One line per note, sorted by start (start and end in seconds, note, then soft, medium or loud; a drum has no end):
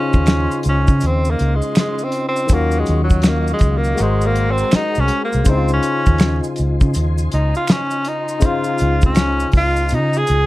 0.00 2.44 C#3 medium
0.00 0.62 C#4 medium
0.00 2.47 C#4 medium
0.00 2.46 D#4 medium
0.00 2.47 F4 medium
0.00 2.51 F4 medium
0.00 2.45 C5 medium
0.00 3.94 D#5 medium
0.00 2.47 C6 medium
0.13 0.46 D#2 medium
0.13 kick medium
0.13 maracas soft
0.26 finger snap medium
0.26 snare loud
0.26 closed hi-hat medium
0.26 maracas medium
0.51 maracas soft
0.63 0.85 C#2 medium
0.63 closed hi-hat medium
0.63 maracas soft
0.69 1.08 C#4 medium
0.87 1.00 C#3 medium
0.87 kick medium
0.87 maracas soft
1.01 1.34 D#2 medium
1.01 closed hi-hat medium
1.01 maracas medium
1.06 1.32 C4 medium
1.25 maracas soft
1.31 1.57 A#3 medium
1.39 1.60 C#2 medium
1.39 closed hi-hat medium
1.55 1.78 G#3 medium
1.62 maracas soft
1.75 finger snap medium
1.75 snare loud
1.75 closed hi-hat medium
1.75 maracas medium
1.80 2.06 G#3 medium
1.99 maracas soft
2.04 2.27 C4 medium
2.12 closed hi-hat medium
2.28 2.55 C4 medium
2.36 maracas soft
2.47 3.93 D#3 medium
2.47 3.97 F#3 medium
2.47 3.95 C#4 medium
2.47 3.96 F5 medium
2.47 3.97 C#6 medium
2.47 kick loud
2.47 closed hi-hat medium
2.47 maracas medium
2.51 2.82 D#2 loud
2.51 2.80 A#3 loud
2.51 3.96 F4 medium
2.51 3.96 F#4 medium
2.71 maracas soft
2.79 3.01 G#3 medium
2.86 3.52 D#2 medium
2.86 closed hi-hat medium
2.86 maracas soft
3.04 3.29 F#3 medium
3.10 kick medium
3.10 maracas soft
3.22 finger snap medium
3.22 snare loud
3.22 closed hi-hat medium
3.22 maracas medium
3.28 3.50 A#3 medium
3.47 maracas soft
3.53 3.79 G#3 medium
3.59 3.93 C#2 medium
3.59 kick medium
3.59 closed hi-hat medium
3.59 maracas soft
3.77 4.03 A#3 medium
3.84 maracas soft
3.95 5.41 G#3 medium
3.95 5.43 F#4 medium
3.95 closed hi-hat medium
3.95 maracas medium
3.99 4.63 G#1 medium
3.99 4.28 G#3 medium
3.99 5.45 G#4 medium
3.99 5.44 A#4 medium
3.99 5.45 C5 medium
3.99 5.45 F#5 medium
3.99 5.45 A#5 medium
3.99 8.39 C6 medium
4.21 maracas soft
4.26 4.52 A#3 loud
4.36 closed hi-hat medium
4.51 4.77 C4 loud
4.58 maracas soft
4.72 5.02 D#4 loud
4.72 finger snap medium
4.72 muted fingered electric bass stroke soft
4.72 snare loud
4.72 closed hi-hat medium
4.72 maracas medium
4.95 5.09 C2 medium
4.95 maracas soft
5.00 5.23 C#4 loud
5.08 closed hi-hat medium
5.24 5.51 A#3 medium
5.32 5.45 C2 medium
5.32 maracas soft
5.44 5.78 C#2 loud
5.44 8.37 C#3 medium
5.44 10.46 F4 medium
5.44 8.38 C5 medium
5.44 10.46 D#5 medium
5.44 10.46 G#5 medium
5.44 kick loud
5.44 closed hi-hat medium
5.44 maracas medium
5.49 5.72 C4 loud
5.49 8.40 D#4 medium
5.49 5.56 E4 medium
5.57 8.44 F4 medium
5.68 maracas medium
5.73 6.42 C#4 medium
5.83 closed hi-hat medium
5.83 maracas soft
6.06 6.39 D#2 medium
6.06 kick medium
6.06 maracas soft
6.18 finger snap medium
6.18 snare loud
6.18 closed hi-hat medium
6.18 maracas medium
6.44 maracas soft
6.56 6.78 C#2 medium
6.56 closed hi-hat medium
6.56 maracas soft
6.81 6.93 C#3 loud
6.81 kick medium
6.81 maracas soft
6.94 7.27 D#2 medium
6.94 closed hi-hat medium
6.94 maracas medium
7.18 maracas soft
7.32 7.53 C#2 medium
7.32 7.54 D#4 medium
7.32 closed hi-hat medium
7.55 7.73 F4 medium
7.55 maracas soft
7.67 8.09 C#4 medium
7.67 finger snap medium
7.67 snare loud
7.67 closed hi-hat medium
7.67 maracas medium
7.91 maracas soft
8.05 8.46 D#4 medium
8.05 closed hi-hat medium
8.28 maracas soft
8.40 10.46 C#3 medium
8.40 10.46 D#4 medium
8.40 10.46 C5 medium
8.40 10.46 A#5 medium
8.40 kick loud
8.40 closed hi-hat medium
8.40 maracas medium
8.45 9.04 F4 medium
8.45 10.46 F4 medium
8.64 maracas soft
8.78 9.44 C#2 loud
8.78 closed hi-hat medium
8.78 maracas soft
9.01 kick medium
9.01 maracas soft
9.06 9.51 C#4 loud
9.15 finger snap medium
9.15 snare loud
9.15 closed hi-hat medium
9.15 maracas medium
9.40 maracas soft
9.52 9.94 C#2 medium
9.52 kick medium
9.52 open hi-hat medium
9.57 9.95 F4 loud
9.76 maracas soft
9.89 10.23 C#3 loud
9.89 closed hi-hat medium
9.89 maracas medium
9.94 10.19 D#4 loud
10.13 maracas soft
10.18 10.46 G#4 loud
10.27 10.46 C#2 medium
10.27 closed hi-hat medium
10.27 maracas medium